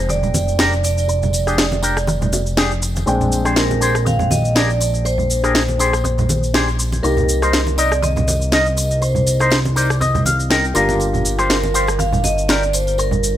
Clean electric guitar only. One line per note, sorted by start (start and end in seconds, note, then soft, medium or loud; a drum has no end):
0.09 muted clean electric guitar stroke loud
0.23 muted clean electric guitar stroke soft
0.59 0.72 D4 medium
0.59 0.73 G4 medium
0.59 0.73 A#4 medium
0.83 muted clean electric guitar stroke soft
1.08 muted clean electric guitar stroke loud
1.22 muted clean electric guitar stroke soft
1.47 1.65 D4 medium
1.47 1.65 G4 medium
1.47 1.65 G#4 medium
1.82 1.96 D4 medium
1.82 1.97 G4 medium
1.82 1.97 A#4 medium
2.08 muted clean electric guitar stroke loud
2.21 muted clean electric guitar stroke soft
2.57 2.71 D4 medium
2.57 2.71 G4 medium
2.57 2.71 G#4 medium
2.82 muted clean electric guitar stroke soft
3.06 muted clean electric guitar stroke loud
3.20 muted clean electric guitar stroke soft
3.45 3.63 D4 medium
3.45 3.63 G4 medium
3.45 3.63 G#4 medium
3.45 3.64 C5 medium
3.81 3.95 D4 medium
3.81 3.95 G4 medium
3.81 3.95 G#4 medium
3.81 3.95 C5 medium
4.05 muted clean electric guitar stroke loud
4.19 muted clean electric guitar stroke soft
4.55 4.69 D4 medium
4.55 4.69 G4 medium
4.55 4.69 G#4 medium
4.55 4.70 A#4 medium
4.80 muted clean electric guitar stroke soft
5.05 muted clean electric guitar stroke loud
5.18 muted clean electric guitar stroke soft
5.43 5.61 D4 medium
5.43 5.62 G4 medium
5.43 5.62 G#4 medium
5.43 5.62 A#4 medium
5.79 5.93 D4 medium
5.79 5.93 G4 medium
5.79 5.93 G#4 medium
5.79 5.94 C5 medium
6.04 muted clean electric guitar stroke loud
6.18 muted clean electric guitar stroke soft
6.54 6.67 D4 medium
6.54 6.68 G4 medium
6.54 6.68 G#4 medium
6.54 6.68 C5 medium
6.78 muted clean electric guitar stroke soft
7.03 muted clean electric guitar stroke loud
7.17 muted clean electric guitar stroke soft
7.42 7.60 D#4 medium
7.42 7.60 A#4 medium
7.42 7.60 C5 medium
7.78 7.91 D#4 medium
7.78 7.92 A#4 medium
7.78 7.92 D#5 medium
8.02 muted clean electric guitar stroke loud
8.16 muted clean electric guitar stroke soft
8.52 8.66 D#4 medium
8.52 8.66 A#4 medium
8.52 8.66 D#5 medium
8.77 muted clean electric guitar stroke soft
9.01 muted clean electric guitar stroke loud
9.15 muted clean electric guitar stroke soft
9.40 9.58 D#4 medium
9.40 9.58 A#4 medium
9.40 9.59 C5 medium
9.76 9.90 D#4 medium
9.76 9.90 A#4 medium
9.76 9.90 C5 medium
9.76 9.99 D5 medium
10.01 10.24 D#5 medium
10.01 muted clean electric guitar stroke loud
10.14 muted clean electric guitar stroke soft
10.26 10.49 F5 medium
10.50 10.64 D#4 medium
10.50 10.64 A#4 medium
10.50 10.64 D#5 medium
10.50 10.74 G5 medium
10.75 11.05 F4 medium
10.75 11.06 G4 medium
10.75 11.06 A#4 loud
10.75 10.98 A#5 medium
11.13 muted clean electric guitar stroke soft
11.38 11.56 F4 medium
11.38 11.57 G4 medium
11.38 11.57 C5 medium
11.74 11.88 F4 medium
11.74 11.88 G4 medium
11.74 11.88 C5 medium
11.99 muted clean electric guitar stroke loud
12.13 muted clean electric guitar stroke soft
12.49 12.62 F4 medium
12.49 12.63 G4 medium
12.49 12.63 A#4 medium
12.74 muted clean electric guitar stroke soft
12.98 muted clean electric guitar stroke loud
13.12 muted clean electric guitar stroke soft